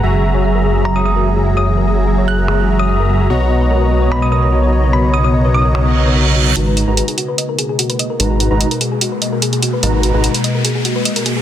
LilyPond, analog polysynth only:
\new Staff \with { instrumentName = "Analog polysynth" } { \time 4/4 \key gis \minor \tempo 4 = 147 <fis fis' gis' e'' ais''>1~ | <fis fis' gis' e'' ais''>1 | <b fis' cis'' dis'' ais''>1~ | <b fis' cis'' dis'' ais''>1 |
<gis dis' fis' b' ais''>8. <gis dis' fis' b' ais''>8 r2 r8. | <gis dis' fis' b' ais''>8. <gis dis' fis' b' ais''>8 r2 r8. | <gis dis' fis' b' ais''>8. <gis dis' fis' b' ais''>8 r2 r8. | }